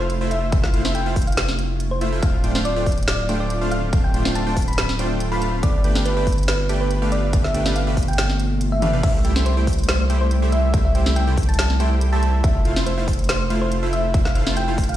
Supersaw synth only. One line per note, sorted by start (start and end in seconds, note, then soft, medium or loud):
0.00 0.18 A3 medium
0.00 0.18 E4 medium
0.00 0.18 F4 medium
0.00 0.18 C5 medium
0.00 0.18 F5 loud
0.21 0.50 A3 medium
0.21 0.50 E4 medium
0.21 0.50 F4 medium
0.21 0.50 C5 medium
0.21 0.50 E5 loud
0.52 0.69 A3 loud
0.52 0.69 E4 medium
0.52 0.69 F4 medium
0.52 0.69 C5 medium
0.52 0.69 E5 loud
0.74 0.82 A3 loud
0.74 0.82 E4 medium
0.74 0.82 F4 medium
0.74 0.82 C5 medium
0.74 0.82 F5 loud
0.85 1.03 A3 medium
0.85 1.03 E4 medium
0.85 1.03 F4 medium
0.85 1.03 C5 medium
0.85 1.03 E5 medium
1.06 1.16 A3 medium
1.06 1.16 E4 medium
1.06 1.16 F4 medium
1.06 1.16 C5 medium
1.06 1.16 F5 medium
2.01 2.10 A3 loud
2.01 2.10 E4 medium
2.01 2.10 F4 medium
2.01 2.10 C5 medium
2.01 2.10 E5 loud
2.13 2.20 A3 medium
2.13 2.20 E4 medium
2.13 2.20 F4 medium
2.13 2.20 C5 medium
2.13 2.20 E5 medium
2.23 2.39 A3 loud
2.23 2.39 D4 medium
2.23 2.39 F4 medium
2.23 2.39 C5 medium
2.23 2.39 F5 loud
2.44 2.52 A3 loud
2.44 2.52 D4 medium
2.44 2.52 F4 medium
2.44 2.52 C5 medium
2.44 2.52 G5 loud
2.55 2.74 A3 medium
2.55 2.74 D4 medium
2.55 2.74 F4 medium
2.55 2.74 C5 medium
2.55 2.74 F5 medium
2.76 2.86 A3 medium
2.76 2.86 D4 medium
2.76 2.86 F4 medium
2.76 2.86 C5 medium
2.76 2.86 G5 medium
3.29 3.59 A3 medium
3.29 3.59 D4 medium
3.29 3.59 F4 medium
3.29 3.59 C5 medium
3.29 3.59 G5 loud
3.61 3.90 A3 medium
3.61 3.90 D4 medium
3.61 3.90 F4 medium
3.61 3.90 C5 medium
3.61 3.90 F5 loud
3.93 4.09 A3 loud
3.93 4.09 D4 medium
3.93 4.09 F4 medium
3.93 4.09 C5 medium
3.93 4.09 F5 loud
4.14 4.23 A3 loud
4.14 4.23 D4 medium
4.14 4.23 F4 medium
4.14 4.23 C5 medium
4.14 4.23 G5 loud
4.25 4.44 A3 medium
4.25 4.44 D4 medium
4.25 4.44 F4 medium
4.25 4.44 C5 medium
4.25 4.44 F5 medium
4.47 4.56 A3 medium
4.47 4.56 D4 medium
4.47 4.56 F4 medium
4.47 4.56 C5 medium
4.47 4.56 G5 medium
4.99 5.29 A3 medium
4.99 5.29 D4 medium
4.99 5.29 F4 medium
4.99 5.29 C5 medium
4.99 5.29 G5 loud
5.32 5.61 A3 medium
5.32 5.61 D4 medium
5.32 5.61 F4 medium
5.32 5.61 C5 medium
5.32 5.61 F5 loud
5.63 5.79 A3 loud
5.63 5.79 D4 medium
5.63 5.79 G4 medium
5.63 5.79 B4 medium
5.63 5.79 F5 loud
5.84 5.93 A3 medium
5.84 5.93 D4 medium
5.84 5.93 G4 medium
5.84 5.93 B4 medium
5.84 5.93 G5 loud
5.95 6.14 A3 medium
5.95 6.14 D4 medium
5.95 6.14 G4 medium
5.95 6.14 B4 medium
5.95 6.14 F5 medium
6.17 6.26 A3 medium
6.17 6.26 D4 medium
6.17 6.26 G4 medium
6.17 6.26 B4 medium
6.17 6.26 G5 medium
6.69 6.99 A3 medium
6.69 6.99 D4 medium
6.69 6.99 G4 medium
6.69 6.99 B4 medium
6.69 6.99 G5 loud
7.02 7.31 A3 medium
7.02 7.31 D4 medium
7.02 7.31 G4 medium
7.02 7.31 B4 medium
7.02 7.31 F5 loud
7.33 7.50 A3 loud
7.33 7.50 D4 medium
7.33 7.50 G4 medium
7.33 7.50 B4 medium
7.33 7.50 F5 loud
7.54 7.63 A3 loud
7.54 7.63 D4 medium
7.54 7.63 G4 medium
7.54 7.63 B4 medium
7.54 7.63 G5 loud
7.66 7.84 A3 medium
7.66 7.84 D4 medium
7.66 7.84 G4 medium
7.66 7.84 B4 medium
7.66 7.84 F5 medium
7.87 7.96 A3 medium
7.87 7.97 D4 medium
7.87 7.97 G4 medium
7.87 7.96 B4 medium
7.87 7.96 G5 medium
8.82 8.91 A3 medium
8.82 8.91 D4 medium
8.82 8.91 G4 medium
8.82 8.91 B4 medium
8.82 8.91 F5 loud
8.93 9.01 A3 medium
8.93 9.01 D4 medium
8.93 9.01 G4 medium
8.93 9.01 B4 medium
8.93 9.01 F5 medium
9.03 9.20 A3 loud
9.03 9.20 E4 medium
9.03 9.20 G4 medium
9.03 9.20 E5 loud
9.25 9.33 A3 loud
9.25 9.33 E4 medium
9.25 9.33 G4 medium
9.25 9.33 C5 medium
9.25 9.33 G5 loud
9.36 9.55 A3 medium
9.36 9.55 E4 medium
9.36 9.55 G4 medium
9.36 9.55 C5 medium
9.36 9.55 E5 medium
9.57 9.67 A3 medium
9.57 9.67 E4 medium
9.57 9.67 G4 medium
9.57 9.67 C5 medium
9.57 9.67 G5 medium
10.10 10.40 A3 medium
10.10 10.40 E4 medium
10.10 10.40 G4 medium
10.10 10.40 C5 medium
10.10 10.40 G5 loud
10.42 10.71 A3 medium
10.42 10.71 E4 medium
10.42 10.71 G4 medium
10.42 10.71 C5 medium
10.42 10.71 E5 loud
10.74 10.90 A3 loud
10.74 10.90 E4 medium
10.74 10.90 G4 medium
10.74 10.90 C5 medium
10.74 10.90 E5 loud
10.95 11.03 A3 loud
10.95 11.04 E4 medium
10.95 11.03 G4 medium
10.95 11.04 C5 medium
10.95 11.04 G5 loud
11.06 11.25 A3 medium
11.06 11.25 E4 medium
11.06 11.25 G4 medium
11.06 11.25 C5 medium
11.06 11.25 E5 medium
11.27 11.37 A3 medium
11.27 11.37 E4 medium
11.27 11.37 G4 medium
11.27 11.37 C5 medium
11.27 11.37 G5 medium
11.80 12.10 A3 medium
11.80 12.10 E4 medium
11.80 12.10 G4 medium
11.80 12.10 C5 medium
11.80 12.10 G5 loud
12.13 12.41 A3 medium
12.13 12.41 E4 medium
12.13 12.41 G4 medium
12.13 12.41 C5 medium
12.13 12.41 E5 loud
12.44 12.60 A3 loud
12.44 12.60 E4 medium
12.44 12.60 F4 medium
12.44 12.60 C5 medium
12.44 12.60 E5 loud
12.65 12.74 A3 loud
12.65 12.74 E4 medium
12.65 12.74 F4 medium
12.65 12.74 C5 medium
12.65 12.74 F5 loud
12.76 12.95 A3 medium
12.76 12.95 E4 medium
12.76 12.95 F4 medium
12.76 12.95 C5 medium
12.76 12.95 E5 medium
12.98 13.07 A3 medium
12.98 13.07 E4 medium
12.98 13.07 F4 medium
12.98 13.07 C5 medium
12.98 13.07 F5 medium
13.50 13.80 A3 medium
13.50 13.80 E4 medium
13.50 13.80 F4 medium
13.50 13.80 C5 medium
13.50 13.80 F5 loud
13.83 14.12 A3 medium
13.83 14.12 E4 medium
13.83 14.12 F4 medium
13.83 14.12 C5 medium
13.83 14.12 E5 loud
14.14 14.30 A3 loud
14.14 14.30 E4 medium
14.14 14.30 F4 medium
14.14 14.30 C5 medium
14.14 14.30 E5 loud
14.35 14.44 A3 loud
14.35 14.44 E4 medium
14.35 14.44 F4 medium
14.35 14.44 C5 medium
14.35 14.44 F5 loud
14.47 14.65 A3 medium
14.47 14.65 E4 medium
14.47 14.65 F4 medium
14.47 14.65 C5 medium
14.47 14.65 E5 medium
14.68 14.77 A3 medium
14.68 14.77 E4 medium
14.68 14.77 F4 medium
14.68 14.77 C5 medium
14.68 14.77 F5 medium